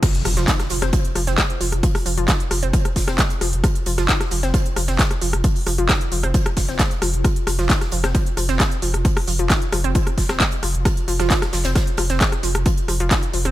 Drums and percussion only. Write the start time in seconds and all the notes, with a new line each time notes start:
0.03 kick, cross-stick, closed hi-hat, crash
0.14 closed hi-hat
0.25 cross-stick, closed hi-hat, open hi-hat
0.37 snare, closed hi-hat
0.48 kick, snare, clap, closed hi-hat
0.59 cross-stick, snare, closed hi-hat
0.70 closed hi-hat, open hi-hat
0.82 cross-stick, snare, closed hi-hat
0.93 kick, closed hi-hat
1.05 closed hi-hat
1.15 cross-stick, closed hi-hat, open hi-hat
1.26 snare, closed hi-hat
1.38 kick, cross-stick, snare, clap, closed hi-hat
1.50 closed hi-hat
1.61 closed hi-hat, open hi-hat
1.72 cross-stick, closed hi-hat
1.83 kick, closed hi-hat
1.95 cross-stick, open hi-hat
2.06 closed hi-hat, open hi-hat
2.17 closed hi-hat
2.28 kick, cross-stick, snare, clap, closed hi-hat
2.40 closed hi-hat
2.51 cross-stick, closed hi-hat, open hi-hat
2.63 closed hi-hat
2.73 kick, closed hi-hat
2.85 cross-stick, closed hi-hat
2.96 kick, snare, closed hi-hat, open hi-hat
3.08 cross-stick, snare, closed hi-hat
3.18 kick, snare, clap, closed hi-hat
3.30 closed hi-hat
3.41 cross-stick, closed hi-hat, open hi-hat
3.53 closed hi-hat
3.64 kick, cross-stick, closed hi-hat
3.75 closed hi-hat
3.86 closed hi-hat, open hi-hat
3.98 cross-stick, snare, closed hi-hat
4.08 kick, snare, clap, closed hi-hat
4.21 cross-stick, snare, closed hi-hat
4.31 closed hi-hat, open hi-hat
4.43 snare, closed hi-hat
4.54 kick, cross-stick, closed hi-hat
4.66 closed hi-hat
4.76 cross-stick, closed hi-hat, open hi-hat
4.88 snare, closed hi-hat
4.99 kick, snare, clap, closed hi-hat
5.11 cross-stick, closed hi-hat
5.21 closed hi-hat, open hi-hat
5.33 cross-stick, closed hi-hat
5.44 kick, closed hi-hat
5.56 open hi-hat
5.66 cross-stick, closed hi-hat, open hi-hat
5.78 closed hi-hat
5.89 kick, cross-stick, snare, clap, closed hi-hat
6.01 closed hi-hat
6.12 closed hi-hat, open hi-hat
6.23 cross-stick, closed hi-hat
6.34 kick, closed hi-hat
6.46 cross-stick, closed hi-hat
6.56 kick, snare, closed hi-hat, open hi-hat
6.68 snare, closed hi-hat
6.79 kick, cross-stick, snare, clap, closed hi-hat
6.91 closed hi-hat
7.02 cross-stick, closed hi-hat, open hi-hat
7.14 closed hi-hat
7.24 kick, cross-stick, closed hi-hat
7.36 closed hi-hat
7.47 cross-stick, closed hi-hat, open hi-hat
7.59 snare, closed hi-hat
7.70 kick, snare, clap, closed hi-hat
7.81 cross-stick, snare, closed hi-hat
7.92 closed hi-hat, open hi-hat
8.04 cross-stick, snare, closed hi-hat
8.15 kick, closed hi-hat
8.26 closed hi-hat
8.37 cross-stick, closed hi-hat, open hi-hat
8.49 snare, closed hi-hat
8.60 kick, cross-stick, snare, clap, closed hi-hat
8.71 closed hi-hat
8.82 closed hi-hat, open hi-hat
8.94 cross-stick, closed hi-hat
9.05 kick, closed hi-hat
9.17 cross-stick, open hi-hat
9.27 closed hi-hat, open hi-hat
9.39 closed hi-hat
9.50 kick, cross-stick, snare, clap, closed hi-hat
9.62 closed hi-hat
9.72 cross-stick, closed hi-hat, open hi-hat
9.84 closed hi-hat
9.95 kick, closed hi-hat
10.07 cross-stick, closed hi-hat
10.18 kick, snare, closed hi-hat, open hi-hat
10.29 cross-stick, snare, closed hi-hat
10.40 kick, snare, clap, closed hi-hat
10.51 closed hi-hat
10.63 cross-stick, closed hi-hat, open hi-hat
10.75 closed hi-hat
10.85 kick, cross-stick, closed hi-hat
10.97 closed hi-hat
11.08 closed hi-hat, open hi-hat
11.19 cross-stick, snare, closed hi-hat
11.30 kick, snare, clap, closed hi-hat
11.42 cross-stick, snare, closed hi-hat
11.53 snare, closed hi-hat, open hi-hat
11.64 snare, closed hi-hat
11.75 kick, cross-stick, snare, closed hi-hat
11.87 closed hi-hat
11.97 cross-stick, closed hi-hat, open hi-hat
12.10 snare, closed hi-hat
12.21 kick, snare, clap, closed hi-hat
12.32 cross-stick, closed hi-hat
12.43 closed hi-hat, open hi-hat
12.55 cross-stick, closed hi-hat
12.66 kick, closed hi-hat
12.77 closed hi-hat
12.88 cross-stick, closed hi-hat, open hi-hat
13.00 closed hi-hat
13.11 kick, cross-stick, snare, clap, closed hi-hat
13.23 closed hi-hat
13.33 closed hi-hat, open hi-hat
13.45 cross-stick, closed hi-hat